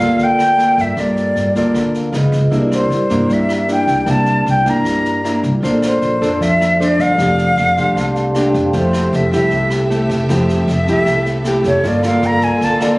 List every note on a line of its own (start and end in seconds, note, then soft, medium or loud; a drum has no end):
0.00 0.74 D2 medium
0.00 0.18 G3 soft
0.00 0.55 A#3 medium
0.00 1.89 F4 medium
0.00 0.56 F4 medium
0.00 1.90 A4 soft
0.00 0.56 A4 medium
0.00 1.92 D5 medium
0.00 0.25 F5 medium
0.19 0.96 D3 soft
0.19 kick medium
0.19 snare soft
0.24 0.82 G5 loud
0.39 cross-stick medium
0.39 snare soft
0.58 0.94 A#3 medium
0.58 0.94 F4 soft
0.58 0.94 A4 medium
0.58 snare soft
0.78 0.96 G2 medium
0.78 1.01 E5 medium
0.78 kick soft
0.78 snare soft
0.97 1.33 G2 medium
0.97 1.73 G3 medium
0.97 1.52 A#3 soft
0.97 1.53 F4 soft
0.97 1.53 A4 medium
0.97 1.57 D5 medium
0.97 kick medium
0.97 cross-stick medium
0.97 snare soft
1.17 snare soft
1.36 1.54 G2 medium
1.36 snare soft
1.55 2.10 D2 medium
1.55 2.11 A#3 medium
1.55 2.11 F4 medium
1.55 2.11 A4 medium
1.55 1.93 D5 medium
1.55 kick soft
1.55 snare soft
1.74 2.12 D3 soft
1.74 kick medium
1.74 cross-stick medium
1.74 snare soft
1.93 2.11 F4 soft
1.93 2.14 A4 soft
1.93 2.14 A#4 soft
1.93 2.15 F5 soft
1.93 snare soft
2.12 2.31 C#2 medium
2.12 2.39 B3 soft
2.12 2.39 D#4 medium
2.12 2.52 F4 medium
2.12 2.40 F4 medium
2.12 2.53 G#4 soft
2.12 2.53 B4 medium
2.12 2.54 D#5 medium
2.12 cross-stick medium
2.12 snare soft
2.32 2.51 C#2 medium
2.32 kick soft
2.32 snare soft
2.51 2.88 C2 medium
2.51 3.28 C3 soft
2.51 2.91 A#3 soft
2.51 2.91 D4 soft
2.51 5.58 E4 medium
2.51 2.91 E4 medium
2.51 5.59 G4 soft
2.51 5.60 A#4 soft
2.51 kick medium
2.51 snare soft
2.56 5.61 D5 medium
2.72 3.34 C5 medium
2.72 cross-stick medium
2.72 snare soft
2.90 3.09 C2 medium
2.90 snare soft
3.10 3.84 G2 medium
3.10 3.66 A#3 medium
3.10 3.66 D4 soft
3.10 3.66 E4 medium
3.10 kick soft
3.10 snare soft
3.29 4.06 G3 soft
3.29 3.74 E5 medium
3.29 kick medium
3.29 snare soft
3.49 cross-stick medium
3.49 snare soft
3.68 4.05 A#3 medium
3.68 4.05 D4 medium
3.68 4.05 E4 medium
3.68 snare soft
3.73 4.12 G5 medium
3.87 4.06 C2 medium
3.87 kick soft
3.87 snare soft
4.06 4.43 C2 medium
4.06 4.83 C3 soft
4.06 4.62 A#3 soft
4.06 4.63 D4 soft
4.06 4.63 E4 medium
4.06 kick medium
4.06 cross-stick medium
4.06 snare soft
4.10 4.48 A5 medium
4.26 snare soft
4.46 4.65 C2 medium
4.46 4.71 G5 medium
4.46 snare soft
4.66 5.40 G2 medium
4.66 5.21 A#3 medium
4.66 5.21 D4 medium
4.66 5.22 E4 medium
4.66 5.46 A#5 medium
4.66 kick soft
4.66 snare soft
4.85 5.61 G3 soft
4.85 kick medium
4.85 cross-stick medium
4.85 snare soft
5.05 snare soft
5.24 5.49 A#3 medium
5.24 5.50 D4 soft
5.24 5.50 E4 medium
5.24 cross-stick medium
5.24 snare soft
5.43 5.62 C2 medium
5.43 kick soft
5.43 snare soft
5.61 5.99 A#1 medium
5.61 6.39 A#3 soft
5.61 6.19 D4 soft
5.61 7.14 F4 medium
5.61 7.15 A4 soft
5.61 6.19 A4 medium
5.61 7.16 C5 soft
5.61 6.19 C5 medium
5.61 kick medium
5.61 snare soft
5.67 7.17 D5 medium
5.82 6.44 C5 medium
5.82 cross-stick medium
5.82 snare soft
6.02 6.20 A#1 medium
6.02 snare soft
6.21 6.95 F2 medium
6.21 6.77 D4 medium
6.21 6.77 A4 medium
6.21 6.77 C5 medium
6.21 kick soft
6.21 snare soft
6.41 7.17 F3 medium
6.41 6.81 E5 medium
6.41 kick medium
6.41 snare soft
6.61 cross-stick medium
6.61 snare soft
6.80 7.16 D4 medium
6.80 7.16 A4 medium
6.80 7.16 C5 medium
6.80 7.02 D5 medium
6.80 snare soft
6.99 7.17 G1 medium
6.99 8.55 F5 loud
6.99 kick soft
6.99 snare soft
7.16 7.55 F1 medium
7.16 7.95 F3 soft
7.16 7.74 A3 soft
7.16 7.74 D4 soft
7.16 8.69 G4 soft
7.16 8.70 A4 soft
7.16 8.71 C5 soft
7.16 kick medium
7.16 cross-stick medium
7.16 snare soft
7.20 7.75 G4 soft
7.20 8.72 D5 soft
7.38 snare soft
7.57 7.75 F1 medium
7.57 snare soft
7.77 8.51 C2 medium
7.77 8.32 A3 medium
7.77 8.33 D4 medium
7.77 8.33 G4 medium
7.77 7.95 C6 medium
7.77 kick soft
7.77 snare soft
7.96 8.72 C3 medium
7.96 8.32 A5 medium
7.96 kick medium
7.96 cross-stick medium
7.96 snare soft
8.15 snare soft
8.35 8.71 A3 medium
8.35 8.71 D4 medium
8.35 8.72 G4 medium
8.35 8.53 G5 medium
8.35 cross-stick medium
8.35 snare soft
8.54 8.73 F1 medium
8.54 8.73 F5 soft
8.54 kick soft
8.54 snare soft
8.71 9.10 F1 medium
8.71 9.50 F3 medium
8.71 9.29 A3 medium
8.71 9.29 E4 soft
8.71 11.79 G4 soft
8.71 11.81 G4 medium
8.71 9.30 G4 medium
8.71 11.80 A4 soft
8.71 12.99 A4 medium
8.71 11.81 E5 medium
8.71 kick medium
8.71 snare soft
8.76 11.81 C5 soft
8.76 9.17 C5 medium
8.76 11.82 E5 medium
8.93 cross-stick medium
8.93 snare soft
9.13 9.31 F1 medium
9.13 9.34 E5 medium
9.13 snare soft
9.32 10.06 C2 medium
9.32 9.88 A3 medium
9.32 9.88 E4 medium
9.32 9.88 G4 medium
9.32 9.70 E5 medium
9.32 kick soft
9.32 snare soft
9.51 10.28 C3 medium
9.51 kick medium
9.51 snare soft
9.70 cross-stick medium
9.70 snare soft
9.90 10.26 A3 medium
9.90 10.26 E4 medium
9.90 10.27 G4 medium
9.90 snare soft
10.10 10.28 F1 medium
10.10 kick soft
10.10 snare soft
10.29 10.65 F1 medium
10.29 11.05 F3 medium
10.29 10.68 A3 medium
10.29 10.68 E4 soft
10.29 10.69 G4 medium
10.29 10.73 C5 medium
10.29 kick medium
10.29 cross-stick medium
10.29 snare soft
10.49 snare soft
10.68 10.86 F1 loud
10.68 10.89 E5 medium
10.68 snare soft
10.87 11.61 C2 medium
10.87 11.43 A3 medium
10.87 11.43 E4 medium
10.87 11.44 G4 medium
10.87 11.25 E5 medium
10.87 kick soft
10.87 snare soft
11.06 11.83 C3 medium
11.06 kick medium
11.06 cross-stick medium
11.06 snare soft
11.26 snare soft
11.44 11.82 A3 medium
11.44 11.82 E4 medium
11.44 11.82 G4 medium
11.44 cross-stick medium
11.44 snare soft
11.64 11.83 F1 medium
11.64 11.89 C#5 medium
11.64 kick soft
11.64 snare soft
11.81 12.20 G1 loud
11.81 12.60 G3 medium
11.81 12.99 A#3 medium
11.81 12.01 A#3 medium
11.81 12.99 F4 medium
11.81 12.01 F4 medium
11.81 12.99 A4 soft
11.81 12.99 D5 soft
11.81 kick medium
11.81 snare soft
11.86 12.01 A4 medium
11.86 12.05 D5 medium
11.86 12.99 F5 medium
12.03 12.79 A#3 medium
12.03 12.79 F4 medium
12.03 12.79 A4 medium
12.03 12.28 F5 medium
12.03 cross-stick medium
12.03 snare soft
12.22 12.41 G1 loud
12.22 12.45 A#5 medium
12.22 snare soft
12.41 12.99 D2 medium
12.41 12.66 G#5 medium
12.41 kick soft
12.41 snare soft
12.61 12.99 D3 medium
12.61 12.84 A5 medium
12.61 kick medium
12.61 snare soft
12.80 12.99 A#3 medium
12.80 12.99 F4 medium
12.80 12.99 A4 medium
12.80 12.99 D5 medium
12.80 cross-stick medium
12.80 snare soft